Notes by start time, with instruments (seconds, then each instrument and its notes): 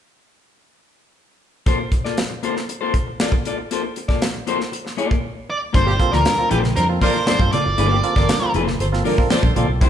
1.66 clean electric guitar A#3 F4 A4 C5, kick, closed hi-hat
1.79 muted clean electric guitar stroke
1.92 muted clean electric guitar stroke, kick, closed hi-hat
2.05 clean electric guitar A#3 F4 A4 D5, snare
2.17 snare, closed hi-hat
2.30 muted clean electric guitar stroke
2.43 clean electric guitar A#3 F4 A4 C5, closed hi-hat
2.56 muted clean electric guitar stroke, snare
2.69 muted clean electric guitar stroke, closed hi-hat
2.81 clean electric guitar A#3 F4 A4 C5
2.94 muted clean electric guitar stroke, kick, closed hi-hat
3.07 muted clean electric guitar stroke
3.20 clean electric guitar A#3 F4 A4 D5, snare, closed hi-hat
3.32 muted clean electric guitar stroke, kick
3.45 clean electric guitar A#3 F4 A4 D5, closed hi-hat
3.58 muted clean electric guitar stroke
3.71 clean electric guitar A#3 F4 A4 C5, closed hi-hat
3.83 muted clean electric guitar stroke
3.96 muted clean electric guitar stroke, closed hi-hat
4.08 clean electric guitar A#3 F4 A4 D5, kick, snare
4.22 snare, closed hi-hat
4.34 muted clean electric guitar stroke
4.47 clean electric guitar A#3 F4 A4 C5, closed hi-hat
4.60 muted clean electric guitar stroke, snare
4.72 muted clean electric guitar stroke, closed hi-hat
4.85 muted clean electric guitar stroke, snare
4.97 clean electric guitar A#3 F4 A4 D5, closed hi-hat
5.10 muted clean electric guitar stroke, kick
5.50 lead electric guitar D5
5.73 fingered electric bass G1, tonewheel organ G2 D3, clean electric guitar A#3 F4 A4 C5, lead electric guitar C5, kick, closed hi-hat
5.87 horn section C4 D4 G4, tonewheel organ F4 A4, muted clean electric guitar stroke, muted conga
5.99 tonewheel organ A#3 C4 F4 A4, muted clean electric guitar stroke, kick, closed hi-hat
6.12 fingered electric bass D2, clean electric guitar A#3 F4 A4 D5, horn section D4 F4 A#4, lead electric guitar A#4, snare, high conga
6.25 tonewheel organ G2 D3, snare, closed hi-hat
6.37 tonewheel organ A#3 C4 F4 A4, muted clean electric guitar stroke, muted conga
6.50 fingered electric bass A#1, clean electric guitar A#3 F4 A4 C5, tonewheel organ F4 A4, lead electric guitar G4, closed hi-hat, high conga
6.63 muted clean electric guitar stroke, snare, low conga
6.76 fingered electric bass F2, tonewheel organ G2 D3, horn section F4 A4 C5, lead electric guitar A#4, muted clean electric guitar stroke, closed hi-hat, muted conga
6.88 tonewheel organ A#3 C4 F4 A4, muted clean electric guitar stroke
7.01 clean electric guitar A#3 F4 A4 D5, horn section D4 F4 A#4, tonewheel organ F4 A4, lead electric guitar C5, kick, open hi-hat, high conga
7.15 muted clean electric guitar stroke
7.27 tonewheel organ G2 D3, clean electric guitar A#3 F4 A4 D5, lead electric guitar C5, snare, closed hi-hat, high conga
7.39 fingered electric bass G2, tonewheel organ A#3 C4 F4 A4, muted clean electric guitar stroke, kick, muted conga
7.52 clean electric guitar A#3 F4 A4 D5, tonewheel organ F4 A4, lead electric guitar D5, closed hi-hat, low conga
7.66 fingered electric bass F#1, muted clean electric guitar stroke
7.78 fingered electric bass G1, tonewheel organ G2 D3, clean electric guitar A#3 F4 A4 C5, closed hi-hat
7.91 horn section C4 D4 G4, tonewheel organ F4 A4, muted clean electric guitar stroke, muted conga
8.04 tonewheel organ A#3 C4 F4 A4, muted clean electric guitar stroke, closed hi-hat
8.16 fingered electric bass G1, clean electric guitar A#3 F4 A4 D5, horn section D4 F4 A#4, kick, snare, high conga
8.28 tonewheel organ G2 D3, snare, closed hi-hat, muted conga
8.42 tonewheel organ A#3 C4 F4 A4, muted clean electric guitar stroke
8.54 fingered electric bass F1, clean electric guitar A#3 F4 A4 C5, tonewheel organ F4 A4, closed hi-hat, high conga
8.67 muted clean electric guitar stroke, snare, low conga
8.79 fingered electric bass G1, horn section F4 A4 C5, muted clean electric guitar stroke, closed hi-hat, muted conga
8.92 tonewheel organ A#3 C4 F4 A4, muted clean electric guitar stroke, snare
9.04 tonewheel organ G2 D3, clean electric guitar A#3 F4 A4 D5, horn section D4 F4 A#4, open hi-hat, high conga
9.18 tonewheel organ A#3 C4 F4 A4, muted clean electric guitar stroke, kick
9.30 clean electric guitar A#3 F4 A4 D5, tonewheel organ F4 A4, horn section F4 A4 C5, snare, closed hi-hat, high conga
9.43 fingered electric bass A#1, tonewheel organ G2 D3, muted clean electric guitar stroke, kick
9.56 fingered electric bass A#1, clean electric guitar A#3 F4 A4 D5, tonewheel organ A#3 C4 F4 A4, closed hi-hat, low conga
9.69 fingered electric bass B1, muted clean electric guitar stroke
9.81 fingered electric bass C2, tonewheel organ C3 G3, clean electric guitar A#3 D4 E4 C5, kick, closed hi-hat